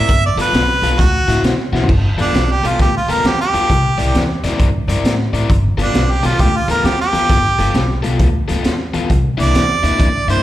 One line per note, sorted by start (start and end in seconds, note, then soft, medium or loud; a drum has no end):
0.00 0.23 E5 loud
0.09 0.29 G1 medium
0.09 kick loud
0.09 closed hi-hat medium
0.26 0.39 D5 medium
0.36 0.47 G1 medium
0.36 0.63 G3 medium
0.36 0.62 B3 medium
0.36 0.62 F4 medium
0.36 0.62 A4 medium
0.36 closed hi-hat medium
0.41 1.01 B4 medium
0.53 0.73 B1 medium
0.53 snare loud
0.53 closed hi-hat medium
0.82 0.93 B1 medium
0.82 0.99 G3 medium
0.82 0.99 B3 medium
0.82 0.99 F4 medium
0.82 0.98 A4 medium
0.82 closed hi-hat medium
0.99 1.19 D2 medium
0.99 1.43 F#4 medium
0.99 kick loud
0.99 closed hi-hat medium
1.27 1.38 A2 medium
1.27 1.53 D3 medium
1.27 1.53 C4 medium
1.27 1.53 E4 medium
1.27 1.52 F#4 medium
1.27 closed hi-hat medium
1.43 1.63 B2 medium
1.43 snare loud
1.43 closed hi-hat medium
1.72 1.83 B2 medium
1.72 1.89 D3 medium
1.72 1.89 C4 medium
1.72 1.89 E4 medium
1.72 1.88 F#4 medium
1.72 snare soft
1.84 floor tom medium
1.89 2.09 G1 medium
1.89 kick loud
1.89 crash medium
2.18 2.28 G1 medium
2.18 2.43 G3 medium
2.18 2.43 B3 medium
2.18 2.53 D4 medium
2.18 2.43 F4 medium
2.18 2.43 A4 medium
2.18 closed hi-hat medium
2.33 2.53 B1 medium
2.33 snare medium
2.33 closed hi-hat medium
2.51 2.69 G4 medium
2.62 2.73 B1 medium
2.62 2.88 G3 medium
2.62 2.88 B3 medium
2.62 2.88 F4 medium
2.62 2.88 A4 medium
2.62 closed hi-hat medium
2.68 2.80 F4 medium
2.79 2.99 D2 medium
2.79 2.95 G4 medium
2.79 kick loud
2.79 closed hi-hat medium
2.97 3.13 F4 medium
3.08 3.19 D2 medium
3.08 3.33 G3 medium
3.08 3.33 B3 medium
3.08 3.33 F4 medium
3.08 3.33 A4 medium
3.08 3.28 A#4 medium
3.08 closed hi-hat medium
3.24 3.44 E2 medium
3.24 3.40 G4 medium
3.24 snare medium
3.24 closed hi-hat medium
3.41 4.27 G4 medium
3.54 3.64 E2 medium
3.54 3.70 G3 medium
3.54 3.69 B3 medium
3.54 3.69 F4 medium
3.54 3.69 A4 medium
3.54 closed hi-hat medium
3.70 3.90 C2 medium
3.70 kick medium
3.70 closed hi-hat medium
3.98 4.09 C2 medium
3.98 4.23 C4 medium
3.98 4.23 E4 medium
3.98 4.23 A#4 medium
3.98 4.23 D5 loud
3.98 closed hi-hat medium
4.15 4.34 E2 medium
4.15 snare loud
4.15 closed hi-hat medium
4.43 4.54 E2 medium
4.43 4.69 C4 medium
4.43 4.68 E4 medium
4.43 4.68 A#4 medium
4.43 4.68 D5 medium
4.43 snare soft
4.43 closed hi-hat medium
4.59 4.79 G2 medium
4.59 kick loud
4.59 closed hi-hat medium
4.88 4.98 G2 medium
4.88 5.14 C4 medium
4.88 5.13 E4 medium
4.88 5.13 A#4 medium
4.88 5.13 D5 medium
4.88 closed hi-hat medium
5.03 5.23 A2 medium
5.03 snare medium
5.03 closed hi-hat medium
5.33 5.44 A2 medium
5.33 5.50 C4 medium
5.33 5.49 E4 medium
5.33 5.49 A#4 medium
5.33 5.49 D5 medium
5.33 closed hi-hat medium
5.50 5.69 G1 medium
5.50 kick loud
5.50 closed hi-hat medium
5.78 5.88 G1 medium
5.78 6.03 G3 medium
5.78 6.03 B3 medium
5.78 6.13 D4 medium
5.78 6.03 F4 medium
5.78 6.02 A4 medium
5.78 closed hi-hat medium
5.94 6.14 B1 medium
5.94 snare loud
5.94 closed hi-hat medium
6.11 6.28 G4 medium
6.23 6.34 B1 medium
6.23 6.48 G3 medium
6.23 6.48 B3 medium
6.23 6.48 F4 medium
6.23 6.43 F4 medium
6.23 6.48 A4 medium
6.23 snare soft
6.23 closed hi-hat medium
6.39 6.59 D2 medium
6.39 6.58 G4 medium
6.39 kick loud
6.39 closed hi-hat medium
6.56 6.70 F4 medium
6.68 6.79 D2 medium
6.68 6.93 G3 medium
6.68 6.93 B3 medium
6.68 6.93 F4 medium
6.68 6.93 A4 medium
6.68 6.87 A#4 medium
6.68 closed hi-hat medium
6.84 7.04 E2 medium
6.84 6.99 G4 medium
6.84 snare loud
6.84 closed hi-hat medium
7.01 7.87 G4 loud
7.13 7.23 E2 medium
7.13 7.38 G3 medium
7.13 7.38 B3 medium
7.13 7.38 F4 medium
7.13 7.37 A4 medium
7.13 closed hi-hat medium
7.29 7.49 G1 medium
7.29 kick loud
7.29 closed hi-hat medium
7.59 7.69 G1 medium
7.59 7.83 G3 medium
7.59 7.83 B3 medium
7.59 7.83 F4 medium
7.59 7.83 A4 medium
7.59 closed hi-hat medium
7.74 7.94 B1 medium
7.74 snare loud
7.74 closed hi-hat medium
8.03 8.14 B1 medium
8.03 8.28 G3 medium
8.03 8.28 B3 medium
8.03 8.28 F4 medium
8.03 8.27 A4 medium
8.03 closed hi-hat medium
8.19 8.39 D2 medium
8.19 kick loud
8.19 closed hi-hat medium
8.48 8.59 D2 medium
8.48 8.73 G3 medium
8.48 8.73 B3 medium
8.48 8.73 F4 medium
8.48 8.73 A4 medium
8.48 closed hi-hat medium
8.64 8.84 E2 medium
8.64 snare medium
8.64 closed hi-hat medium
8.94 9.04 E2 medium
8.94 9.09 G3 medium
8.94 9.09 B3 medium
8.94 9.09 F4 medium
8.94 9.09 A4 medium
8.94 closed hi-hat medium
9.10 9.29 C2 medium
9.10 kick loud
9.10 closed hi-hat medium
9.38 9.49 C2 medium
9.38 9.63 C3 medium
9.38 9.63 A#3 medium
9.38 9.62 D4 medium
9.38 9.62 E4 medium
9.38 10.27 D5 loud
9.38 closed hi-hat medium
9.54 9.74 E2 medium
9.54 snare medium
9.54 closed hi-hat medium
9.83 9.94 E2 medium
9.83 10.08 C3 medium
9.83 10.08 A#3 medium
9.83 10.07 D4 medium
9.83 10.08 E4 medium
9.83 closed hi-hat medium
10.00 10.19 G2 medium
10.00 kick loud
10.00 closed hi-hat medium
10.28 10.38 G2 medium
10.28 10.43 C3 medium
10.28 10.43 A#3 medium
10.28 10.43 D4 medium
10.28 10.43 E4 medium
10.28 10.43 C5 medium
10.28 closed hi-hat medium